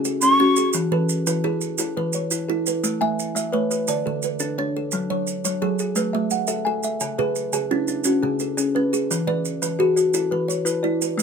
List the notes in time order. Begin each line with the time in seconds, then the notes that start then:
Already playing: C#3 F#4 G#4
0.05 A4, maracas
0.21 C#4 C#6, maracas
0.40 C#4 F#4
0.56 G#4, maracas
0.73 E3, maracas
0.92 E3 A4 B4
1.09 maracas
1.27 E3 E4 B4, maracas
1.44 E3 E4 G#4
1.61 maracas
1.78 E4 A4, maracas
1.97 E3 B4
2.13 C#5, maracas
2.31 E4, maracas
2.48 E4 A4
2.66 B4, maracas
2.84 A3, maracas
3.01 A3 E5 G#5
3.19 maracas
3.35 A3 E5, maracas
3.52 A3 B4 C#5
3.71 B4, maracas
3.87 D3 D5, maracas
4.06 D3 A4
4.22 B4, maracas
4.39 D4 A4, maracas
4.58 D4 C#5
4.77 A4
4.92 F#3, maracas
5.10 F#3 C#5
5.27 maracas
5.45 F#3 C#5, maracas
5.62 F#3 G#4 A4
5.79 G#4, maracas
5.96 A3 B4, maracas
6.13 A3 E5
6.30 F#5, maracas
6.47 A4 E5, maracas
6.65 A4 G#5
6.83 E5, maracas
7.00 C#3, maracas
7.18 C#3 G#4 B4
7.35 maracas
7.53 C#3 G#4, maracas
7.71 C#4 D4 E4
7.88 D4, maracas
8.04 C#4 F#4, maracas
8.23 C#3 G#4
8.39 A4, maracas
8.57 C#4 G#4, maracas
8.75 C#4 B4
8.93 G#4, maracas
9.11 E3, maracas
9.27 E3 B4 D5
9.45 maracas
9.62 E3 B4, maracas
9.79 E3 F#4 G#4
9.96 F#4, maracas
10.14 E4 A4, maracas
10.31 E3 B4
10.48 C#5, maracas
10.65 E4 B4, maracas
10.83 E4 D5
11.02 B4, maracas
11.18 A3, maracas